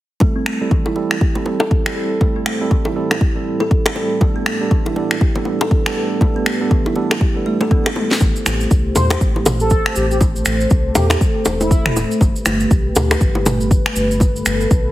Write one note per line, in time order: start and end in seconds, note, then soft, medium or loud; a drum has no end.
0.20 0.58 G3 medium
0.20 0.35 A3 medium
0.20 8.17 A3 medium
0.20 0.58 C4 medium
0.20 0.58 E4 medium
0.20 4.17 G4 medium
0.20 0.58 A4 medium
0.20 4.17 C5 medium
0.20 kick loud
0.20 low bongo medium
0.36 0.45 C4 medium
0.46 0.59 A3 medium
0.46 finger snap medium
0.61 0.94 G3 medium
0.61 0.94 C4 medium
0.61 0.94 E4 medium
0.61 0.94 A4 medium
0.71 0.85 E3 medium
0.71 kick loud
0.86 0.96 E4 medium
0.86 high bongo medium
0.96 1.15 G3 medium
0.96 1.15 C4 medium
0.96 1.15 E4 medium
0.96 1.15 A4 medium
0.96 low bongo soft
1.11 finger snap medium
1.21 1.29 G4 medium
1.21 kick loud
1.35 1.82 G3 medium
1.35 1.82 C4 medium
1.35 1.82 E4 medium
1.35 1.82 A4 medium
1.35 low bongo medium
1.46 low bongo medium
1.60 1.70 A4 medium
1.60 high bongo loud
1.71 kick loud
1.86 2.19 G3 medium
1.86 2.19 C4 medium
1.86 2.19 E4 medium
1.86 2.19 A4 loud
1.86 finger snap medium
1.96 2.10 A4 medium
2.21 2.58 G3 medium
2.21 2.35 A3 medium
2.21 2.58 C4 medium
2.21 2.57 E4 medium
2.21 2.57 A4 medium
2.21 kick loud
2.21 low bongo medium
2.36 2.46 C4 medium
2.46 2.59 A3 medium
2.46 finger snap medium
2.61 2.94 G3 medium
2.61 2.94 C4 medium
2.61 2.94 E4 medium
2.61 2.94 A4 medium
2.71 2.84 E3 medium
2.71 kick loud
2.85 2.95 E4 medium
2.85 high bongo medium
2.96 3.15 G3 medium
2.96 3.15 C4 medium
2.96 3.14 E4 medium
2.96 3.15 A4 medium
3.11 finger snap medium
3.11 high bongo medium
3.21 3.29 G4 medium
3.21 kick loud
3.36 3.82 G3 medium
3.36 3.82 C4 medium
3.36 3.82 E4 medium
3.36 3.82 A4 medium
3.60 3.70 A4 medium
3.60 low bongo medium
3.71 kick loud
3.86 4.19 G3 medium
3.86 4.19 C4 medium
3.86 4.19 E4 medium
3.86 4.19 A4 loud
3.86 finger snap medium
3.86 high bongo loud
3.95 4.09 A4 medium
3.95 low bongo medium
4.21 4.57 G3 medium
4.21 4.35 A3 medium
4.21 4.57 B3 medium
4.21 4.58 D4 medium
4.21 8.17 G4 medium
4.21 4.58 A4 medium
4.21 8.17 B4 medium
4.21 kick loud
4.21 low bongo medium
4.36 4.45 B3 medium
4.46 4.59 A3 medium
4.46 finger snap medium
4.61 4.94 G3 medium
4.61 4.94 B3 medium
4.61 4.94 D4 medium
4.61 4.94 A4 medium
4.71 4.84 E3 medium
4.71 kick loud
4.86 4.95 E4 medium
4.86 high bongo medium
4.96 5.15 G3 medium
4.96 5.15 B3 medium
4.96 5.15 D4 medium
4.96 5.15 A4 medium
4.96 low bongo medium
5.11 finger snap medium
5.21 5.29 G4 medium
5.21 kick loud
5.36 5.82 G3 medium
5.36 5.82 B3 medium
5.36 5.82 D4 medium
5.36 5.82 A4 medium
5.36 low bongo medium
5.45 low bongo medium
5.61 5.70 A4 medium
5.61 high bongo loud
5.71 kick loud
5.86 6.19 G3 medium
5.86 6.19 B3 medium
5.86 6.19 D4 medium
5.86 6.19 A4 loud
5.86 finger snap medium
5.96 6.10 A4 medium
6.21 6.57 G3 medium
6.21 6.35 A3 medium
6.21 6.57 B3 medium
6.21 6.57 D4 medium
6.21 6.57 A4 medium
6.21 kick loud
6.21 low bongo medium
6.36 6.46 B3 medium
6.46 6.60 A3 medium
6.46 finger snap medium
6.61 6.94 G3 medium
6.61 6.94 B3 medium
6.61 6.94 D4 medium
6.61 6.94 A4 medium
6.71 6.85 E3 medium
6.71 kick loud
6.86 6.96 E4 medium
6.86 high bongo medium
6.96 7.15 G3 medium
6.96 7.15 B3 medium
6.96 7.15 D4 medium
6.96 7.15 A4 medium
6.96 low bongo medium
7.11 finger snap medium
7.11 high bongo medium
7.21 7.29 G4 medium
7.21 kick loud
7.36 7.58 G3 medium
7.36 7.58 B3 medium
7.36 7.58 D4 medium
7.36 7.58 A4 medium
7.46 7.60 A3 loud
7.61 7.70 G3 medium
7.61 7.70 B3 medium
7.61 7.70 D4 medium
7.61 7.70 A4 loud
7.61 7.70 A4 medium
7.61 low bongo medium
7.71 7.90 G3 medium
7.71 7.79 B3 medium
7.71 7.90 B3 medium
7.71 7.90 D4 medium
7.71 7.90 A4 medium
7.71 kick loud
7.86 7.95 A3 medium
7.86 finger snap medium
7.86 high bongo loud
7.96 8.10 A3 medium
7.96 high tom medium
7.96 low bongo medium
8.11 snare medium
8.20 8.32 A1 loud
8.20 14.92 A3 medium
8.20 10.19 G4 medium
8.20 12.17 C5 medium
8.20 kick loud
8.20 low bongo medium
8.20 cabasa soft
8.36 cabasa soft
8.46 8.66 A1 medium
8.46 finger snap medium
8.46 low bongo medium
8.46 cabasa medium
8.61 cabasa soft
8.71 8.91 C2 medium
8.71 kick loud
8.71 cabasa soft
8.95 9.16 E2 medium
8.95 9.06 C5 medium
8.95 mid tom medium
8.95 high bongo loud
8.95 low bongo medium
8.95 cabasa medium
9.10 9.17 C5 medium
9.10 finger snap medium
9.10 high bongo loud
9.10 cabasa soft
9.21 9.80 A1 medium
9.21 kick loud
9.21 cabasa soft
9.36 low bongo medium
9.46 mid tom medium
9.46 high bongo loud
9.46 low bongo medium
9.46 cabasa medium
9.60 9.94 A4 loud
9.60 cabasa soft
9.70 kick loud
9.70 cabasa soft
9.86 finger snap medium
9.96 10.42 A1 medium
9.96 10.06 G4 medium
9.96 cabasa medium
10.11 10.17 G4 medium
10.11 cabasa soft
10.21 12.19 A4 medium
10.21 kick loud
10.21 low bongo medium
10.21 cabasa soft
10.36 cabasa soft
10.45 10.66 A1 medium
10.45 finger snap medium
10.45 cabasa medium
10.61 cabasa soft
10.70 10.91 C2 loud
10.70 kick loud
10.70 cabasa soft
10.95 11.16 E2 medium
10.95 11.06 G4 medium
10.95 mid tom medium
10.95 high bongo loud
10.95 cabasa medium
11.10 11.18 G4 medium
11.10 finger snap medium
11.10 high bongo loud
11.10 cabasa soft
11.21 kick loud
11.21 cabasa medium
11.45 12.05 E1 loud
11.45 high bongo loud
11.45 cabasa medium
11.61 11.96 E4 loud
11.61 low bongo medium
11.61 cabasa soft
11.71 kick loud
11.71 cabasa medium
11.86 finger snap loud
11.86 mid tom medium
11.96 low bongo loud
11.96 cabasa medium
12.11 cabasa soft
12.21 12.32 G1 loud
12.21 14.19 G4 medium
12.21 14.92 B4 medium
12.21 kick loud
12.21 low bongo medium
12.21 cabasa soft
12.36 cabasa soft
12.46 12.66 G1 medium
12.46 finger snap loud
12.46 low bongo medium
12.46 cabasa loud
12.60 cabasa soft
12.71 12.91 B1 medium
12.71 kick loud
12.71 cabasa soft
12.96 13.16 D2 medium
12.96 mid tom medium
12.96 high bongo loud
12.96 low bongo medium
12.96 cabasa loud
13.11 finger snap medium
13.11 high bongo loud
13.11 cabasa soft
13.21 13.80 G1 medium
13.21 kick loud
13.21 cabasa medium
13.35 low bongo medium
13.46 mid tom medium
13.46 high bongo loud
13.46 low bongo medium
13.46 cabasa medium
13.61 cabasa soft
13.71 kick loud
13.71 cabasa medium
13.86 finger snap loud
13.96 14.42 G1 medium
13.96 cabasa loud
14.11 cabasa soft
14.20 14.92 A4 medium
14.20 kick loud
14.20 low bongo medium
14.20 cabasa medium
14.36 cabasa soft
14.46 14.66 G1 medium
14.46 finger snap loud
14.46 cabasa medium
14.61 cabasa soft
14.71 14.91 B1 medium
14.71 kick loud
14.71 cabasa soft